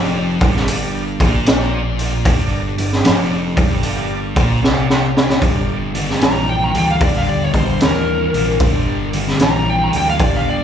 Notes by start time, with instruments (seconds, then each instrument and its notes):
Already playing: picked electric bass F1, distorted electric guitar F2, tonewheel organ D4 G4 A#4 D5
0.41 picked electric bass G1, distorted electric guitar G2, tonewheel organ D4 G4 A#4 D5, kick, open hi-hat
0.56 snare
0.67 tonewheel organ D4 G4 A#4 D5, open hi-hat
1.20 picked electric bass A#1, distorted electric guitar A#2, tonewheel organ D4 G4 A#4 D5, kick, open hi-hat
1.46 tonewheel organ D4 G4 A#4 C5, snare, open hi-hat
1.98 tonewheel organ D4 G4 A#4 D5, open hi-hat
2.25 picked electric bass G1, distorted electric guitar G2, tonewheel organ D4 G4 A#4 D5, kick, open hi-hat
2.77 picked electric bass G1, distorted electric guitar G2, tonewheel organ D4 G4 A#4 D5, open hi-hat
2.92 snare
3.03 picked electric bass F1, distorted electric guitar F2, tonewheel organ D4 G4 A#4 D5, snare, open hi-hat
3.56 picked electric bass G1, distorted electric guitar G2, tonewheel organ D4 G4 A#4 D5, kick, open hi-hat
3.83 tonewheel organ D4 G4 A#4 D5, open hi-hat
4.35 picked electric bass A#1, distorted electric guitar A#2, tonewheel organ D4 G4 A#4 D5, kick, open hi-hat
4.62 picked electric bass C2, distorted electric guitar C3, tonewheel organ D4 G4 A#4 D5, snare
4.90 snare
5.15 tonewheel organ D4 G4 A#4 D5, snare
5.30 snare
5.40 picked electric bass G1, distorted electric guitar G2 D3, tonewheel organ D4 G4 A#4 D5, kick, open hi-hat
5.94 distorted electric guitar G2 D3, tonewheel organ D4 G4 A#4 D5, open hi-hat
6.10 snare
6.21 picked electric bass A#1, distorted electric guitar G2 E3, tonewheel organ D4 G4 A#4 D5, electric slide guitar A#5, snare, open hi-hat
6.49 electric slide guitar G5
6.64 electric slide guitar A#5
6.74 picked electric bass D2, distorted electric guitar G2 E3, tonewheel organ D4 G4 A#4 D5, electric slide guitar G5, open hi-hat
6.91 electric slide guitar F5
7.00 picked electric bass D#2, distorted electric guitar G2 D3, tonewheel organ D4 G4 A#4 D5, electric slide guitar D5, kick, open hi-hat
7.17 electric slide guitar F5
7.29 electric slide guitar D5
7.44 electric slide guitar C#5
7.54 picked electric bass G2, distorted electric guitar G2 D3, tonewheel organ D4 G4 A#4 F5, electric slide guitar C5, kick, open hi-hat
7.79 picked electric bass D#2, distorted electric guitar G2 E3, tonewheel organ D4 G4 A#4 D5, snare, open hi-hat
7.85 electric slide guitar A#4
8.33 picked electric bass A#1, distorted electric guitar G2 E3, tonewheel organ D4 G4 A#4 D5, open hi-hat
8.60 picked electric bass G1, distorted electric guitar G2 D3, tonewheel organ D4 G4 A#4 D5, kick, open hi-hat
9.11 distorted electric guitar G2 D3, tonewheel organ D4 G4 A#4 D5, open hi-hat
9.28 snare
9.38 picked electric bass A#1, distorted electric guitar G2 E3, tonewheel organ D4 G4 A#4 D5, snare, open hi-hat
9.43 electric slide guitar A#5
9.69 electric slide guitar G5
9.84 electric slide guitar A#5
9.91 picked electric bass D2, distorted electric guitar G2 E3, tonewheel organ D4 G4 A#4 D5, open hi-hat
9.97 electric slide guitar G5
10.10 electric slide guitar F5
10.19 picked electric bass D#2, distorted electric guitar G2 D3, tonewheel organ D4 G4 A#4 D5, kick, open hi-hat
10.23 electric slide guitar D5
10.37 electric slide guitar F5
10.50 electric slide guitar D5